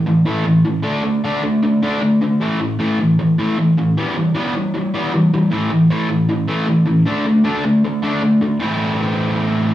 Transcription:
0.06 A2 E3
0.25 A2 E3 A3
0.45 A2 E3
0.65 A2 E3
0.83 D3 A3 D4
1.03 D3 A3
1.24 D3 A3 D4
1.43 D3 A3
1.63 D3 A3
1.82 D3 A3 D4
2.02 D3 A3
2.21 D3 A3
2.40 A2 E3 A3
2.60 A2 E3
2.79 A2 E3 A3
3.00 A2 E3
3.19 A2 E3
3.38 A2 E3 A3
3.58 A2 E3
3.77 A2 E3
3.97 E3 G3 B3
4.16 E3 G3
4.35 E3 G3 B3
4.55 E3 G3
4.74 E3 G3
4.94 E3 G3 B3
5.14 E3 G3
5.34 E3 G3
5.51 A2 E3 A3
5.71 A2 E3
5.90 A2 E3 A3
6.10 A2 E3
6.29 A2 E3
6.48 A2 E3 A3
6.68 A2 E3
6.86 A2 E3
7.06 D3 A3 D4
7.26 D3 A3
7.44 D3 A3 D4
7.65 D3 A3
7.85 D3 A3
8.03 D3 A3 D4
8.22 D3 A3
8.42 D3 A3
8.60 A2 E3 A3 C4 E4

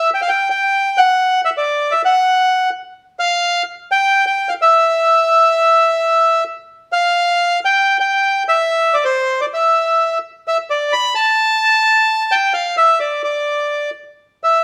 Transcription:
0.14 G5
0.22 F5
0.29 G5
0.50 G5
0.98 F#5
1.45 E5
1.57 D5
1.91 E5
2.05 F#5
3.19 F5
3.92 G5
4.26 G5
4.49 F5
4.62 E5
6.93 F5
7.65 G5
8.00 G5
8.48 E5
8.94 D5
9.05 C5
9.41 D5
9.54 E5
10.48 E5
10.70 D5
10.93 B5
11.15 A5
12.32 G5
12.54 F5
12.77 E5
13.00 D5
13.24 D5
14.44 E5

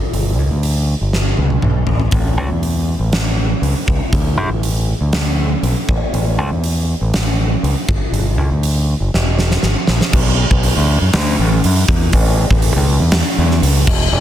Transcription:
0.13 G1, open hi-hat
0.38 C#2
0.51 D2
0.63 open hi-hat
1.01 G1
1.13 snare
1.37 C#2, high tom
1.50 high tom
1.62 B1, mid tom
1.87 A1, floor tom
2.00 floor tom
2.11 A1, kick, open hi-hat
2.37 C#2
2.51 E2
2.63 open hi-hat
2.99 A1
3.13 snare, open hi-hat
3.62 C#2, open hi-hat
3.88 C#2, kick
4.12 D2, kick, open hi-hat
4.37 F#2
4.49 A1
4.63 open hi-hat
5.01 D2
5.13 snare, open hi-hat
5.63 B1, open hi-hat
5.89 A1, kick
6.13 A1, open hi-hat
6.38 C#2
6.51 E2
6.64 open hi-hat
7.01 A1
7.14 snare, open hi-hat
7.63 C#2, open hi-hat
7.88 G1, kick
8.12 G1, open hi-hat
8.38 C#2
8.51 D2
8.63 open hi-hat
9.00 F#1
9.14 E1, snare
9.39 snare
9.51 snare
9.63 G#1, snare
9.87 A#1, snare
10.01 snare
10.13 B1, kick, crash
10.51 B1, kick
10.63 open hi-hat
10.76 D2
11.02 F#2
11.13 D2, snare, open hi-hat
11.39 A1
11.64 F#2, open hi-hat
11.88 E2, kick
12.13 A1, kick, open hi-hat
12.50 A1, kick
12.62 open hi-hat
12.76 C#2
13.00 E2
13.12 snare, open hi-hat
13.38 E2
13.51 snare
13.62 C#2, open hi-hat
13.87 E1, kick, crash
14.12 E1

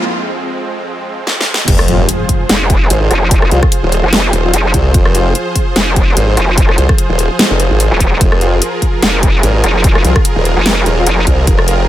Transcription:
Already playing: F2 F3 G#3 C4
1.27 snare
1.41 snare
1.54 snare
1.68 F1 F3 F4 G#4 C5, kick, closed hi-hat, crash, impact
1.79 cross-stick
1.88 F3 C4 F4, closed hi-hat
2.09 closed hi-hat
2.29 kick, closed hi-hat
2.49 F1, snare, closed hi-hat
2.70 kick, closed hi-hat
2.90 G#1, closed hi-hat
3.11 F1, cross-stick, closed hi-hat
3.31 kick, closed hi-hat
3.42 cross-stick
3.51 C2 F3 C4 F4, closed hi-hat
3.63 kick, cross-stick
3.72 closed hi-hat
3.83 D#1
3.92 closed hi-hat
4.03 F1
4.13 snare, closed hi-hat
4.33 D#1, closed hi-hat
4.44 F3 C4 F4
4.53 F1, closed hi-hat
4.74 C2, kick, closed hi-hat
4.94 F1, kick, closed hi-hat
5.06 cross-stick
5.15 F3 C4 F4, closed hi-hat
5.35 closed hi-hat
5.56 kick, closed hi-hat
5.76 F1, snare, closed hi-hat
5.96 kick, closed hi-hat
6.17 G#1, closed hi-hat
6.37 F1, cross-stick, closed hi-hat
6.58 kick, closed hi-hat
6.69 cross-stick
6.78 C2, closed hi-hat
6.89 kick, cross-stick
6.98 closed hi-hat
7.10 D#1
7.19 closed hi-hat
7.39 snare, closed hi-hat
7.50 F1
7.60 closed hi-hat
7.71 G#1
7.80 closed hi-hat
7.91 D#1
8.00 kick, closed hi-hat
8.21 F1 A#4, kick, closed hi-hat
8.32 cross-stick
8.41 F3 C4 F4, closed hi-hat
8.62 closed hi-hat
8.82 kick, closed hi-hat
9.02 F1, snare, closed hi-hat
9.23 kick, closed hi-hat
9.43 G#1, closed hi-hat
9.64 F1, cross-stick, closed hi-hat
9.84 kick, closed hi-hat
9.95 cross-stick
10.05 C2 F3 C4 F4, closed hi-hat
10.16 kick, cross-stick
10.25 closed hi-hat
10.36 D#1
10.45 closed hi-hat
10.57 F1
10.66 snare, closed hi-hat
10.86 D#1, closed hi-hat
10.97 F3 C4 F4
11.07 F1, closed hi-hat
11.27 C2, kick, closed hi-hat
11.47 F1, kick, closed hi-hat
11.59 cross-stick
11.68 F3 C4 F4, closed hi-hat

